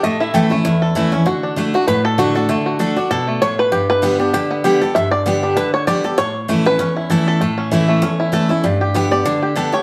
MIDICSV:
0, 0, Header, 1, 4, 480
1, 0, Start_track
1, 0, Tempo, 307377
1, 48, Time_signature, 4, 2, 24, 8
1, 15344, End_track
2, 0, Start_track
2, 0, Title_t, "Resonator guitar played with a steel bar"
2, 0, Program_c, 0, 25
2, 52, Note_on_c, 0, 75, 90
2, 308, Note_off_c, 0, 75, 0
2, 317, Note_on_c, 0, 76, 100
2, 524, Note_off_c, 0, 76, 0
2, 531, Note_on_c, 0, 79, 101
2, 690, Note_off_c, 0, 79, 0
2, 15344, End_track
3, 0, Start_track
3, 0, Title_t, "Five-string banjo"
3, 0, Program_c, 1, 105
3, 52, Note_on_c, 1, 57, 81
3, 319, Note_on_c, 1, 64, 60
3, 533, Note_on_c, 1, 69, 55
3, 743, Note_off_c, 1, 57, 0
3, 798, Note_on_c, 1, 57, 71
3, 968, Note_off_c, 1, 64, 0
3, 1014, Note_on_c, 1, 64, 63
3, 1223, Note_off_c, 1, 69, 0
3, 1280, Note_on_c, 1, 69, 60
3, 1448, Note_off_c, 1, 57, 0
3, 1478, Note_off_c, 1, 64, 0
3, 1497, Note_on_c, 1, 64, 64
3, 1757, Note_on_c, 1, 61, 68
3, 1929, Note_off_c, 1, 69, 0
3, 1969, Note_off_c, 1, 64, 0
3, 1970, Note_off_c, 1, 61, 0
3, 1975, Note_on_c, 1, 66, 73
3, 2237, Note_on_c, 1, 62, 58
3, 2452, Note_on_c, 1, 57, 51
3, 2723, Note_off_c, 1, 66, 0
3, 2730, Note_on_c, 1, 66, 86
3, 2922, Note_off_c, 1, 66, 0
3, 2928, Note_on_c, 1, 71, 104
3, 3143, Note_off_c, 1, 57, 0
3, 3176, Note_off_c, 1, 71, 0
3, 3197, Note_on_c, 1, 69, 94
3, 3414, Note_on_c, 1, 66, 84
3, 3417, Note_off_c, 1, 69, 0
3, 3677, Note_on_c, 1, 69, 64
3, 3895, Note_on_c, 1, 57, 74
3, 4105, Note_off_c, 1, 66, 0
3, 4154, Note_on_c, 1, 66, 58
3, 4328, Note_off_c, 1, 69, 0
3, 4373, Note_on_c, 1, 69, 57
3, 4424, Note_off_c, 1, 62, 0
3, 4585, Note_off_c, 1, 57, 0
3, 4637, Note_on_c, 1, 62, 65
3, 4806, Note_off_c, 1, 66, 0
3, 4833, Note_off_c, 1, 69, 0
3, 4851, Note_on_c, 1, 69, 87
3, 5115, Note_on_c, 1, 57, 56
3, 5336, Note_on_c, 1, 73, 106
3, 5345, Note_off_c, 1, 69, 0
3, 5383, Note_off_c, 1, 62, 0
3, 5606, Note_off_c, 1, 73, 0
3, 5607, Note_on_c, 1, 71, 97
3, 5767, Note_off_c, 1, 57, 0
3, 5809, Note_on_c, 1, 67, 62
3, 6048, Note_off_c, 1, 71, 0
3, 6085, Note_on_c, 1, 71, 96
3, 6289, Note_on_c, 1, 59, 54
3, 6549, Note_off_c, 1, 71, 0
3, 6556, Note_on_c, 1, 62, 62
3, 6764, Note_off_c, 1, 67, 0
3, 6770, Note_on_c, 1, 67, 63
3, 6982, Note_off_c, 1, 59, 0
3, 7038, Note_on_c, 1, 59, 64
3, 7207, Note_off_c, 1, 62, 0
3, 7231, Note_off_c, 1, 67, 0
3, 7249, Note_on_c, 1, 67, 62
3, 7520, Note_on_c, 1, 69, 60
3, 7688, Note_off_c, 1, 59, 0
3, 7722, Note_off_c, 1, 67, 0
3, 7728, Note_on_c, 1, 76, 103
3, 7980, Note_off_c, 1, 76, 0
3, 7987, Note_on_c, 1, 74, 105
3, 8169, Note_off_c, 1, 69, 0
3, 8215, Note_on_c, 1, 59, 55
3, 8479, Note_on_c, 1, 62, 62
3, 8685, Note_off_c, 1, 74, 0
3, 8691, Note_on_c, 1, 71, 94
3, 8905, Note_off_c, 1, 59, 0
3, 8952, Note_off_c, 1, 71, 0
3, 8959, Note_on_c, 1, 73, 89
3, 9129, Note_off_c, 1, 62, 0
3, 9165, Note_off_c, 1, 73, 0
3, 9171, Note_on_c, 1, 74, 93
3, 9440, Note_on_c, 1, 69, 61
3, 9643, Note_off_c, 1, 74, 0
3, 9649, Note_on_c, 1, 73, 100
3, 9652, Note_off_c, 1, 69, 0
3, 10134, Note_on_c, 1, 57, 55
3, 10400, Note_off_c, 1, 73, 0
3, 10406, Note_on_c, 1, 71, 94
3, 10613, Note_on_c, 1, 61, 63
3, 10824, Note_off_c, 1, 57, 0
3, 10871, Note_off_c, 1, 71, 0
3, 10877, Note_on_c, 1, 64, 57
3, 11092, Note_on_c, 1, 69, 64
3, 11303, Note_off_c, 1, 61, 0
3, 11345, Note_off_c, 1, 69, 0
3, 11364, Note_on_c, 1, 69, 78
3, 11527, Note_off_c, 1, 64, 0
3, 11568, Note_on_c, 1, 57, 73
3, 11832, Note_on_c, 1, 61, 63
3, 12051, Note_on_c, 1, 64, 51
3, 12261, Note_off_c, 1, 57, 0
3, 12313, Note_on_c, 1, 57, 72
3, 12471, Note_off_c, 1, 69, 0
3, 12485, Note_off_c, 1, 61, 0
3, 12534, Note_on_c, 1, 61, 59
3, 12742, Note_off_c, 1, 64, 0
3, 12801, Note_on_c, 1, 64, 62
3, 12965, Note_off_c, 1, 57, 0
3, 13013, Note_on_c, 1, 69, 63
3, 13224, Note_off_c, 1, 61, 0
3, 13260, Note_off_c, 1, 64, 0
3, 13279, Note_on_c, 1, 64, 60
3, 13491, Note_off_c, 1, 64, 0
3, 13491, Note_off_c, 1, 69, 0
3, 13493, Note_on_c, 1, 55, 73
3, 13760, Note_on_c, 1, 67, 64
3, 13975, Note_on_c, 1, 59, 62
3, 14183, Note_off_c, 1, 55, 0
3, 14229, Note_off_c, 1, 67, 0
3, 14235, Note_on_c, 1, 74, 85
3, 14455, Note_on_c, 1, 62, 63
3, 14664, Note_off_c, 1, 59, 0
3, 14711, Note_off_c, 1, 74, 0
3, 14717, Note_on_c, 1, 67, 61
3, 14935, Note_on_c, 1, 69, 65
3, 15144, Note_off_c, 1, 62, 0
3, 15202, Note_on_c, 1, 73, 86
3, 15344, Note_off_c, 1, 67, 0
3, 15344, Note_off_c, 1, 69, 0
3, 15344, Note_off_c, 1, 73, 0
3, 15344, End_track
4, 0, Start_track
4, 0, Title_t, "Steel-string acoustic guitar"
4, 0, Program_c, 2, 25
4, 59, Note_on_c, 2, 45, 80
4, 527, Note_on_c, 2, 52, 86
4, 540, Note_on_c, 2, 57, 99
4, 547, Note_on_c, 2, 61, 87
4, 552, Note_on_c, 2, 64, 86
4, 762, Note_off_c, 2, 64, 0
4, 781, Note_on_c, 2, 64, 63
4, 783, Note_off_c, 2, 52, 0
4, 790, Note_off_c, 2, 57, 0
4, 793, Note_off_c, 2, 61, 0
4, 812, Note_on_c, 2, 61, 52
4, 971, Note_off_c, 2, 45, 0
4, 993, Note_off_c, 2, 64, 0
4, 1009, Note_off_c, 2, 61, 0
4, 1011, Note_on_c, 2, 40, 103
4, 1486, Note_on_c, 2, 52, 90
4, 1494, Note_on_c, 2, 57, 89
4, 1504, Note_on_c, 2, 61, 93
4, 1506, Note_on_c, 2, 64, 91
4, 1727, Note_off_c, 2, 64, 0
4, 1742, Note_off_c, 2, 52, 0
4, 1746, Note_off_c, 2, 57, 0
4, 1746, Note_on_c, 2, 64, 69
4, 1751, Note_off_c, 2, 61, 0
4, 1773, Note_on_c, 2, 61, 49
4, 1927, Note_off_c, 2, 40, 0
4, 1956, Note_off_c, 2, 64, 0
4, 1962, Note_on_c, 2, 50, 76
4, 1969, Note_off_c, 2, 61, 0
4, 2423, Note_off_c, 2, 50, 0
4, 2441, Note_on_c, 2, 50, 80
4, 2457, Note_on_c, 2, 57, 84
4, 2464, Note_on_c, 2, 62, 83
4, 2469, Note_on_c, 2, 66, 81
4, 2697, Note_off_c, 2, 66, 0
4, 2700, Note_off_c, 2, 50, 0
4, 2708, Note_off_c, 2, 57, 0
4, 2711, Note_off_c, 2, 62, 0
4, 2716, Note_on_c, 2, 66, 65
4, 2742, Note_on_c, 2, 62, 48
4, 2921, Note_off_c, 2, 66, 0
4, 2934, Note_off_c, 2, 62, 0
4, 2934, Note_on_c, 2, 45, 96
4, 3404, Note_on_c, 2, 50, 86
4, 3418, Note_on_c, 2, 57, 87
4, 3425, Note_on_c, 2, 62, 83
4, 3429, Note_on_c, 2, 66, 88
4, 3653, Note_off_c, 2, 66, 0
4, 3662, Note_off_c, 2, 50, 0
4, 3668, Note_off_c, 2, 57, 0
4, 3672, Note_off_c, 2, 62, 0
4, 3672, Note_on_c, 2, 66, 64
4, 3699, Note_on_c, 2, 62, 58
4, 3849, Note_off_c, 2, 45, 0
4, 3879, Note_off_c, 2, 66, 0
4, 3885, Note_on_c, 2, 50, 89
4, 3893, Note_off_c, 2, 62, 0
4, 4340, Note_off_c, 2, 50, 0
4, 4358, Note_on_c, 2, 50, 78
4, 4366, Note_on_c, 2, 57, 82
4, 4375, Note_on_c, 2, 62, 83
4, 4385, Note_on_c, 2, 66, 96
4, 4610, Note_off_c, 2, 66, 0
4, 4619, Note_off_c, 2, 50, 0
4, 4623, Note_off_c, 2, 57, 0
4, 4627, Note_off_c, 2, 62, 0
4, 4628, Note_on_c, 2, 66, 54
4, 4656, Note_on_c, 2, 62, 52
4, 4837, Note_off_c, 2, 66, 0
4, 4851, Note_off_c, 2, 62, 0
4, 4854, Note_on_c, 2, 47, 85
4, 5310, Note_off_c, 2, 47, 0
4, 5337, Note_on_c, 2, 45, 82
4, 5792, Note_off_c, 2, 45, 0
4, 5808, Note_on_c, 2, 43, 90
4, 6279, Note_on_c, 2, 50, 86
4, 6290, Note_on_c, 2, 55, 84
4, 6295, Note_on_c, 2, 59, 90
4, 6305, Note_on_c, 2, 67, 102
4, 6531, Note_off_c, 2, 67, 0
4, 6539, Note_off_c, 2, 50, 0
4, 6545, Note_off_c, 2, 55, 0
4, 6547, Note_off_c, 2, 59, 0
4, 6550, Note_on_c, 2, 67, 59
4, 6572, Note_on_c, 2, 59, 46
4, 6726, Note_off_c, 2, 43, 0
4, 6758, Note_off_c, 2, 67, 0
4, 6769, Note_off_c, 2, 59, 0
4, 6776, Note_on_c, 2, 50, 98
4, 7228, Note_off_c, 2, 50, 0
4, 7247, Note_on_c, 2, 50, 92
4, 7258, Note_on_c, 2, 55, 100
4, 7264, Note_on_c, 2, 59, 92
4, 7270, Note_on_c, 2, 67, 86
4, 7499, Note_off_c, 2, 67, 0
4, 7503, Note_off_c, 2, 50, 0
4, 7509, Note_off_c, 2, 55, 0
4, 7512, Note_off_c, 2, 59, 0
4, 7518, Note_on_c, 2, 67, 63
4, 7545, Note_on_c, 2, 59, 54
4, 7722, Note_off_c, 2, 67, 0
4, 7736, Note_off_c, 2, 59, 0
4, 7742, Note_on_c, 2, 43, 80
4, 8210, Note_on_c, 2, 50, 90
4, 8220, Note_on_c, 2, 55, 78
4, 8231, Note_on_c, 2, 59, 89
4, 8239, Note_on_c, 2, 67, 106
4, 8653, Note_off_c, 2, 43, 0
4, 8668, Note_off_c, 2, 50, 0
4, 8673, Note_off_c, 2, 55, 0
4, 8679, Note_off_c, 2, 59, 0
4, 8683, Note_off_c, 2, 67, 0
4, 8694, Note_on_c, 2, 50, 91
4, 9148, Note_off_c, 2, 50, 0
4, 9166, Note_on_c, 2, 50, 76
4, 9178, Note_on_c, 2, 55, 84
4, 9187, Note_on_c, 2, 59, 84
4, 9189, Note_on_c, 2, 67, 91
4, 9413, Note_off_c, 2, 67, 0
4, 9423, Note_off_c, 2, 50, 0
4, 9429, Note_off_c, 2, 55, 0
4, 9432, Note_on_c, 2, 67, 61
4, 9433, Note_off_c, 2, 59, 0
4, 9454, Note_on_c, 2, 59, 52
4, 9639, Note_off_c, 2, 67, 0
4, 9646, Note_on_c, 2, 45, 87
4, 9650, Note_off_c, 2, 59, 0
4, 10124, Note_on_c, 2, 52, 82
4, 10134, Note_on_c, 2, 57, 88
4, 10140, Note_on_c, 2, 61, 98
4, 10151, Note_on_c, 2, 64, 94
4, 10372, Note_off_c, 2, 64, 0
4, 10382, Note_off_c, 2, 52, 0
4, 10386, Note_off_c, 2, 57, 0
4, 10390, Note_off_c, 2, 61, 0
4, 10391, Note_on_c, 2, 64, 62
4, 10413, Note_on_c, 2, 61, 49
4, 10565, Note_off_c, 2, 45, 0
4, 10599, Note_off_c, 2, 64, 0
4, 10604, Note_on_c, 2, 40, 97
4, 10610, Note_off_c, 2, 61, 0
4, 11082, Note_on_c, 2, 52, 83
4, 11097, Note_on_c, 2, 57, 82
4, 11103, Note_on_c, 2, 61, 91
4, 11113, Note_on_c, 2, 64, 101
4, 11523, Note_off_c, 2, 40, 0
4, 11544, Note_off_c, 2, 52, 0
4, 11551, Note_off_c, 2, 57, 0
4, 11554, Note_off_c, 2, 61, 0
4, 11560, Note_off_c, 2, 64, 0
4, 11578, Note_on_c, 2, 45, 80
4, 12047, Note_on_c, 2, 52, 85
4, 12061, Note_on_c, 2, 57, 86
4, 12065, Note_on_c, 2, 61, 91
4, 12076, Note_on_c, 2, 64, 99
4, 12490, Note_off_c, 2, 45, 0
4, 12506, Note_off_c, 2, 52, 0
4, 12513, Note_off_c, 2, 57, 0
4, 12515, Note_off_c, 2, 61, 0
4, 12521, Note_off_c, 2, 64, 0
4, 12522, Note_on_c, 2, 40, 108
4, 12991, Note_on_c, 2, 52, 78
4, 13001, Note_on_c, 2, 57, 95
4, 13005, Note_on_c, 2, 61, 86
4, 13015, Note_on_c, 2, 64, 92
4, 13240, Note_off_c, 2, 64, 0
4, 13255, Note_off_c, 2, 52, 0
4, 13259, Note_on_c, 2, 64, 65
4, 13260, Note_off_c, 2, 57, 0
4, 13262, Note_off_c, 2, 61, 0
4, 13289, Note_on_c, 2, 61, 55
4, 13442, Note_off_c, 2, 40, 0
4, 13472, Note_off_c, 2, 64, 0
4, 13486, Note_on_c, 2, 43, 83
4, 13487, Note_off_c, 2, 61, 0
4, 13967, Note_on_c, 2, 50, 82
4, 13978, Note_on_c, 2, 55, 85
4, 13985, Note_on_c, 2, 59, 93
4, 13993, Note_on_c, 2, 67, 102
4, 14211, Note_off_c, 2, 67, 0
4, 14223, Note_off_c, 2, 50, 0
4, 14228, Note_off_c, 2, 55, 0
4, 14230, Note_on_c, 2, 67, 61
4, 14231, Note_off_c, 2, 59, 0
4, 14258, Note_on_c, 2, 59, 43
4, 14404, Note_off_c, 2, 43, 0
4, 14437, Note_off_c, 2, 67, 0
4, 14452, Note_off_c, 2, 59, 0
4, 14452, Note_on_c, 2, 50, 102
4, 14902, Note_off_c, 2, 50, 0
4, 14921, Note_on_c, 2, 50, 81
4, 14930, Note_on_c, 2, 55, 87
4, 14941, Note_on_c, 2, 59, 99
4, 14944, Note_on_c, 2, 67, 97
4, 15166, Note_off_c, 2, 67, 0
4, 15179, Note_off_c, 2, 50, 0
4, 15184, Note_off_c, 2, 55, 0
4, 15185, Note_on_c, 2, 67, 71
4, 15189, Note_off_c, 2, 59, 0
4, 15208, Note_on_c, 2, 59, 58
4, 15344, Note_off_c, 2, 59, 0
4, 15344, Note_off_c, 2, 67, 0
4, 15344, End_track
0, 0, End_of_file